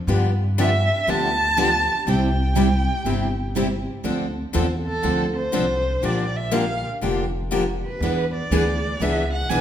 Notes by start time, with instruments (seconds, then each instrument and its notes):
0.07 upright bass G2, steel-string acoustic guitar D3 F3 B3 D4 G4
0.59 steel-string acoustic guitar D3 F3 B3 D4 G4, violin E5
1.07 upright bass D2, steel-string acoustic guitar D3 F3 B3 D4 G4, violin A5
1.58 steel-string acoustic guitar D3 F3 B3 D4 G4
2.06 upright bass C2, steel-string acoustic guitar C3 G3 C4 E4 G4
2.10 violin G5
2.55 steel-string acoustic guitar C3 G3 C4 E4 G4
3.05 upright bass G1, steel-string acoustic guitar C3 G3 C4 E4 G4
3.55 steel-string acoustic guitar C3 G3 C4 E4 G4
4.03 upright bass D2, steel-string acoustic guitar D3 F3 C4 D4 A4
4.54 upright bass E2, steel-string acoustic guitar D3 F3 C4 D4 A4
4.86 violin A4
5.02 upright bass D2, steel-string acoustic guitar D3 F3 C4 D4 A4
5.36 violin C5
5.53 upright bass C2, steel-string acoustic guitar D3 F3 C4 D4 A4
6.02 upright bass A#1, steel-string acoustic guitar D3 F3 A#3 D4 G4, violin D5
6.36 violin E5
6.53 steel-string acoustic guitar D3 F3 A#3 D4 G4, violin F5
7.02 upright bass F1, steel-string acoustic guitar D3 F3 A#3 D4 G4
7.52 steel-string acoustic guitar D3 F3 A#3 D4 G4
7.86 violin B4
8.00 upright bass E2, steel-string acoustic guitar E3 B3 D4 G#4 B4
8.34 violin D5
8.51 upright bass D2, steel-string acoustic guitar E3 B3 D4 G#4 B4
9.00 upright bass C#2, steel-string acoustic guitar E3 B3 D4 G#4 B4, violin E5
9.33 violin F#5
9.49 upright bass B1, steel-string acoustic guitar E3 B3 D4 G#4 B4, violin G#5